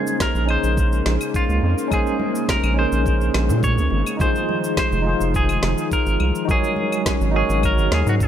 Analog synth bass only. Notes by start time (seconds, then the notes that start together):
0.35 A#1
0.63 A#1
1.06 A#1
1.49 C#2
1.63 F2
2.63 A#1
2.92 A#1
3.34 A#1
3.49 A#2
3.78 C#2
3.91 G#1
4.92 F1
5.20 F1
5.63 F1
6.06 G#1
6.20 C2
7.21 G#1
7.49 G#1
7.78 G#1
7.92 D#2
8.06 G#2